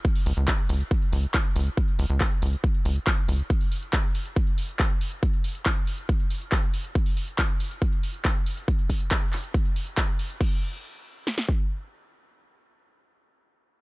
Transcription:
<<
  \new Staff \with { instrumentName = "Analog synth bass" } { \clef bass \time 4/4 \key cis \phrygian \tempo 4 = 139 r8 cis,16 cis,16 r8 cis,16 r8. cis,16 r8. cis,16 r16 | r8 cis,16 cis,16 r8 cis,16 r8. cis,16 r8. cis,16 r16 | r1 | r1 |
r1 | r1 | r1 | r1 | }
  \new DrumStaff \with { instrumentName = "Drums" } \drummode { \time 4/4 <hh bd>16 hho16 hho16 hh16 <hc hh bd>16 hh16 hho16 hh16 <hh bd>16 hh16 hho16 hh16 <hc hh bd>16 hh16 hho16 hh16 | <hh bd>16 hh16 hho8 <hc hh bd>16 hh16 hho16 hh16 <hh bd>16 hh16 hho16 hh16 <hc hh bd>16 hh16 hho16 hh16 | <hh bd>16 hho16 hho16 hh16 <hc hh bd>16 hh16 hho16 hh16 <hh bd>16 hh16 hho16 hh16 <hc hh bd>16 hh16 hho16 hh16 | <hh bd>16 hh16 hho16 hh16 <hc hh bd>16 hh16 hho16 hh16 <hh bd>16 hh16 hho16 hh16 <hc hh bd>16 hh16 hho16 hh16 |
<hh bd>16 hho16 hho16 hh16 <hc hh bd>16 hh16 hho16 hh16 <hh bd>16 hh16 hho16 hh16 <hc hh bd>16 hh16 hho16 hh16 | <hh bd>16 hh16 <hho bd>16 hh16 <hc hh bd>16 hh16 <hc hho>16 hh16 <hh bd>16 hh16 hho16 hh16 <hc hho bd>16 hh16 hho16 hh16 | <cymc bd>4 r4 sn16 sn16 bd8 r4 | r4 r4 r4 r4 | }
>>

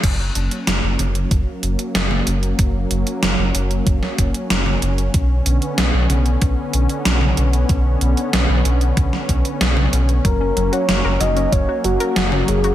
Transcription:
<<
  \new Staff \with { instrumentName = "Soft synth lead" } { \time 4/4 \key fis \major \tempo 4 = 94 r1 | r1 | r1 | r1 |
ais'8. cis''8. dis''8 cis''8 fis'4 gis'8 | }
  \new Staff \with { instrumentName = "Analog synth pad" } { \time 4/4 \key fis \major << { cis'1~ | cis'1~ | cis'1~ | cis'1~ |
cis'1 | } \\ { <fis ais>1~ | <fis ais>1 | <d b>1~ | <d b>1 |
<fis ais>1 | } >> }
  \new Staff \with { instrumentName = "Synth arpeggio sound" } { \time 4/4 \key fis \major r1 | r1 | r1 | r1 |
fis16 cis'16 fis16 fis'16 fis16 ais'16 fis16 cis'16 fis16 fis'16 fis16 ais'16 fis16 cis'16 fis16 fis'16 | }
  \new Staff \with { instrumentName = "Analog synth bass" } { \clef bass \time 4/4 \key fis \major fis,,8 fis,,16 r16 fis,,16 fis,,16 fis,,8 fis,,16 r16 fis,,16 r16 fis,,8 fis,,8 | fis,,8 fis,,16 r16 fis,,16 fis,,16 fis,,8 fis,,16 r16 fis,,16 r16 fis,,8 fis,,8 | b,,8 b,,16 r16 b,,16 b,,16 b,,8 b,,16 r16 b,,16 r16 b,,8 b,,8 | b,,8 b,,16 r16 b,,16 b,,16 b,,8 b,,16 r16 b,,16 r16 b,,8 b,,8 |
fis,,8 fis,,16 r16 fis,,16 fis,,16 fis,,8 fis,,16 r16 fis,,16 r16 fis,,8 fis,,8 | }
  \new DrumStaff \with { instrumentName = "Drums" } \drummode { \time 4/4 <cymc hh bd>8 hh16 hh16 <hh sn>8 <hh toml>16 hh16 <hh bd>8 hh16 hh16 <hh sn>16 toml16 hh16 hh16 | <hh bd>8 hh16 hh16 <hh sn>8 hh16 hh16 <hh bd>16 sn16 <hh bd>16 hh16 <hh sn>16 toml16 hh16 hh16 | <hh bd>8 hh16 hh16 <hh sn>8 <hh toml>16 hh16 <hh bd>8 hh16 hh16 <hh sn>16 toml16 hh16 hh16 | <hh bd>8 hh16 hh16 <hh sn>8 hh16 hh16 <hh bd>16 sn16 <hh bd>16 hh16 <hh sn>16 toml16 hh16 hh16 |
<hh bd>8 hh16 hh16 <hh sn>8 <hh toml>16 hh16 <hh bd>8 hh16 hh16 <hh sn>16 toml16 hh16 hh16 | }
>>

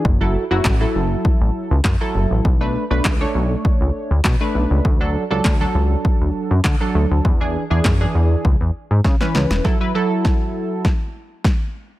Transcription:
<<
  \new Staff \with { instrumentName = "Analog polysynth" } { \time 4/4 \key fis \minor \tempo 4 = 100 r16 <fis e' a'>8 <fis e' fis'>8 <fis e' a'>4. r8 <fis e' a'>8. | r16 <a d' b'>8 <a d' b'>8 <a d' cis''>4. r8 <a d' b'>8. | r16 <fis d' a'>8 <fis d' a'>8 <fis d' a'>4. r8 <fis d' a'>8. | r16 <e d' gis'>8 <e d' gis'>8 <e d' gis'>8. r4 r16 <e cis' b'>8. |
<fis e' a'>16 <fis e' b'>16 <fis e' a'>4. r2 | }
  \new Staff \with { instrumentName = "Analog synth bass" } { \clef bass \time 4/4 \key fis \minor fis,,8. fis,,16 a,,8 fis,,8 r16 a,,16 r16 cis,16 fis,16 r16 fis,,16 a,,16 | b,,8. b,,16 cis,8 b,,8 r16 cis,16 r16 d,16 b,16 r16 b,,16 cis,16 | d,8. cis,16 d,8 cis,8 r16 d,16 r16 fis,16 d16 r16 d,16 d,16 | e,8. e,16 fis,8 e,8 cis,16 e,16 r16 gis,16 cis16 r16 cis,16 e,,16 |
r1 | }
  \new DrumStaff \with { instrumentName = "Drums" } \drummode { \time 4/4 bd4 <hc bd sn>4 bd4 <hc bd sn>4 | bd4 <hc bd sn>4 bd4 <hc bd sn>4 | bd4 <hc bd sn>4 bd4 <hc bd sn>4 | bd4 <hc bd sn>4 bd4 <bd sn>16 sn16 sn16 sn16 |
<bd sn>4 <bd sn>4 <bd sn>4 <bd sn>4 | }
>>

